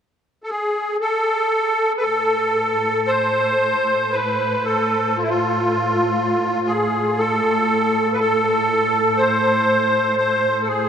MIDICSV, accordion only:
0, 0, Header, 1, 2, 480
1, 0, Start_track
1, 0, Key_signature, 0, "minor"
1, 0, Tempo, 1015228
1, 962, Time_signature, 3, 2, 24, 8
1, 963, Tempo, 1041667
1, 2403, Tempo, 1003344
1, 5142, End_track
2, 0, Start_track
2, 0, Title_t, "Accordion"
2, 0, Program_c, 0, 21
2, 205, Note_on_c, 0, 69, 58
2, 237, Note_on_c, 0, 68, 75
2, 238, Note_off_c, 0, 69, 0
2, 458, Note_off_c, 0, 68, 0
2, 478, Note_on_c, 0, 69, 89
2, 910, Note_off_c, 0, 69, 0
2, 934, Note_on_c, 0, 71, 50
2, 953, Note_on_c, 0, 69, 84
2, 965, Note_off_c, 0, 71, 0
2, 1441, Note_on_c, 0, 72, 88
2, 1456, Note_off_c, 0, 69, 0
2, 1921, Note_on_c, 0, 71, 84
2, 1940, Note_off_c, 0, 72, 0
2, 2166, Note_on_c, 0, 69, 81
2, 2171, Note_off_c, 0, 71, 0
2, 2404, Note_on_c, 0, 65, 75
2, 2409, Note_off_c, 0, 69, 0
2, 2432, Note_on_c, 0, 64, 57
2, 2437, Note_off_c, 0, 65, 0
2, 2463, Note_on_c, 0, 65, 82
2, 2466, Note_off_c, 0, 64, 0
2, 3125, Note_on_c, 0, 68, 72
2, 3149, Note_off_c, 0, 65, 0
2, 3371, Note_on_c, 0, 69, 90
2, 3379, Note_off_c, 0, 68, 0
2, 3823, Note_on_c, 0, 71, 56
2, 3834, Note_off_c, 0, 69, 0
2, 3855, Note_off_c, 0, 71, 0
2, 3857, Note_on_c, 0, 69, 90
2, 4322, Note_on_c, 0, 72, 89
2, 4345, Note_off_c, 0, 69, 0
2, 4794, Note_off_c, 0, 72, 0
2, 4801, Note_on_c, 0, 72, 84
2, 5014, Note_on_c, 0, 69, 54
2, 5015, Note_off_c, 0, 72, 0
2, 5043, Note_on_c, 0, 68, 68
2, 5045, Note_off_c, 0, 69, 0
2, 5142, Note_off_c, 0, 68, 0
2, 5142, End_track
0, 0, End_of_file